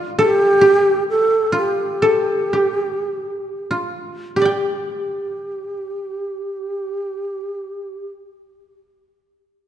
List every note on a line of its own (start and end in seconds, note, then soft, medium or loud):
0.00 1.52 F4 soft
0.00 0.61 G4 medium
0.00 0.18 A4 medium
0.19 1.04 G4 medium
0.19 2.02 A4 medium
0.61 2.53 G4 medium
1.10 1.52 A4 medium
1.52 3.70 F4 soft
1.57 3.68 G4 medium
2.02 3.92 A4 medium
2.53 4.36 G4 soft
3.71 5.89 F4 soft
4.36 8.08 G4 soft
4.36 8.10 G4 soft
4.42 8.13 D5 soft
4.42 8.17 G5 soft